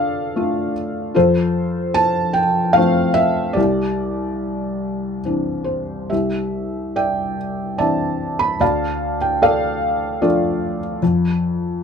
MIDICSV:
0, 0, Header, 1, 2, 480
1, 0, Start_track
1, 0, Tempo, 810811
1, 681, Time_signature, 3, 2, 24, 8
1, 2607, Tempo, 851064
1, 4527, Tempo, 804290
1, 6930, End_track
2, 0, Start_track
2, 0, Title_t, "Felt piano"
2, 0, Program_c, 0, 0
2, 0, Control_c, 0, 64, 127
2, 0, Note_on_c, 0, 50, 53
2, 0, Note_on_c, 0, 65, 59
2, 0, Note_on_c, 0, 69, 67
2, 0, Note_on_c, 0, 74, 63
2, 0, Note_on_c, 0, 77, 94
2, 214, Note_on_c, 0, 57, 52
2, 217, Note_on_c, 0, 62, 45
2, 220, Note_off_c, 0, 65, 0
2, 220, Note_on_c, 0, 65, 50
2, 416, Note_off_c, 0, 77, 0
2, 427, Note_off_c, 0, 69, 0
2, 429, Note_off_c, 0, 74, 0
2, 659, Note_off_c, 0, 50, 0
2, 669, Note_off_c, 0, 65, 0
2, 670, Note_off_c, 0, 57, 0
2, 672, Note_off_c, 0, 62, 0
2, 678, Note_on_c, 0, 65, 60
2, 682, Note_on_c, 0, 69, 60
2, 687, Note_on_c, 0, 72, 94
2, 688, Control_c, 0, 64, 0
2, 689, Note_on_c, 0, 41, 65
2, 783, Control_c, 0, 64, 127
2, 1151, Note_on_c, 0, 81, 111
2, 1174, Note_off_c, 0, 72, 0
2, 1374, Note_off_c, 0, 65, 0
2, 1376, Note_off_c, 0, 69, 0
2, 1382, Note_on_c, 0, 79, 94
2, 1404, Note_off_c, 0, 81, 0
2, 1617, Note_on_c, 0, 77, 95
2, 1638, Note_off_c, 0, 79, 0
2, 1641, Note_on_c, 0, 57, 54
2, 1642, Note_on_c, 0, 53, 56
2, 1648, Note_on_c, 0, 60, 61
2, 1858, Note_on_c, 0, 76, 105
2, 1874, Note_off_c, 0, 77, 0
2, 2091, Note_on_c, 0, 74, 80
2, 2098, Note_off_c, 0, 41, 0
2, 2101, Note_on_c, 0, 67, 52
2, 2104, Note_off_c, 0, 57, 0
2, 2105, Note_off_c, 0, 53, 0
2, 2108, Note_off_c, 0, 60, 0
2, 2113, Note_on_c, 0, 36, 67
2, 2115, Note_off_c, 0, 76, 0
2, 2126, Control_c, 0, 64, 0
2, 2247, Control_c, 0, 64, 127
2, 3053, Note_off_c, 0, 74, 0
2, 3058, Note_off_c, 0, 67, 0
2, 3084, Note_on_c, 0, 52, 41
2, 3086, Note_on_c, 0, 60, 37
2, 3091, Note_on_c, 0, 62, 52
2, 3306, Note_on_c, 0, 72, 59
2, 3550, Note_off_c, 0, 36, 0
2, 3558, Note_off_c, 0, 52, 0
2, 3559, Note_off_c, 0, 60, 0
2, 3562, Note_off_c, 0, 62, 0
2, 3562, Note_on_c, 0, 76, 66
2, 3564, Note_on_c, 0, 67, 51
2, 3569, Note_off_c, 0, 72, 0
2, 3575, Note_on_c, 0, 36, 51
2, 3581, Control_c, 0, 64, 0
2, 3664, Control_c, 0, 64, 127
2, 4040, Note_off_c, 0, 76, 0
2, 4048, Note_on_c, 0, 74, 55
2, 4048, Note_on_c, 0, 76, 61
2, 4050, Note_on_c, 0, 79, 81
2, 4266, Note_off_c, 0, 67, 0
2, 4504, Note_off_c, 0, 74, 0
2, 4508, Note_off_c, 0, 76, 0
2, 4513, Note_on_c, 0, 74, 63
2, 4514, Note_on_c, 0, 81, 77
2, 4517, Note_on_c, 0, 76, 59
2, 4519, Note_on_c, 0, 52, 49
2, 4523, Note_on_c, 0, 60, 43
2, 4525, Note_on_c, 0, 62, 49
2, 4537, Note_off_c, 0, 79, 0
2, 4857, Note_off_c, 0, 81, 0
2, 4876, Note_on_c, 0, 83, 88
2, 4976, Note_off_c, 0, 74, 0
2, 4979, Note_off_c, 0, 76, 0
2, 4984, Note_off_c, 0, 36, 0
2, 4989, Note_off_c, 0, 52, 0
2, 4991, Note_off_c, 0, 60, 0
2, 4992, Note_off_c, 0, 62, 0
2, 5000, Note_on_c, 0, 38, 61
2, 5003, Note_on_c, 0, 74, 64
2, 5005, Note_off_c, 0, 83, 0
2, 5005, Note_on_c, 0, 81, 81
2, 5006, Note_on_c, 0, 77, 66
2, 5015, Control_c, 0, 64, 0
2, 5131, Control_c, 0, 64, 127
2, 5341, Note_off_c, 0, 81, 0
2, 5366, Note_on_c, 0, 79, 74
2, 5481, Note_off_c, 0, 74, 0
2, 5484, Note_off_c, 0, 77, 0
2, 5489, Note_off_c, 0, 79, 0
2, 5490, Note_on_c, 0, 69, 70
2, 5490, Note_on_c, 0, 74, 69
2, 5493, Note_on_c, 0, 77, 91
2, 5956, Note_off_c, 0, 69, 0
2, 5957, Note_off_c, 0, 74, 0
2, 5963, Note_on_c, 0, 53, 56
2, 5965, Note_on_c, 0, 69, 55
2, 5966, Note_on_c, 0, 57, 49
2, 5966, Note_on_c, 0, 74, 73
2, 5967, Note_on_c, 0, 62, 55
2, 5972, Note_on_c, 0, 65, 51
2, 5984, Note_off_c, 0, 77, 0
2, 6301, Note_off_c, 0, 74, 0
2, 6416, Note_off_c, 0, 38, 0
2, 6420, Note_off_c, 0, 69, 0
2, 6423, Note_off_c, 0, 65, 0
2, 6428, Note_off_c, 0, 53, 0
2, 6430, Note_off_c, 0, 57, 0
2, 6430, Note_off_c, 0, 62, 0
2, 6447, Note_on_c, 0, 41, 68
2, 6450, Control_c, 0, 64, 0
2, 6569, Control_c, 0, 64, 127
2, 6930, Note_off_c, 0, 41, 0
2, 6930, End_track
0, 0, End_of_file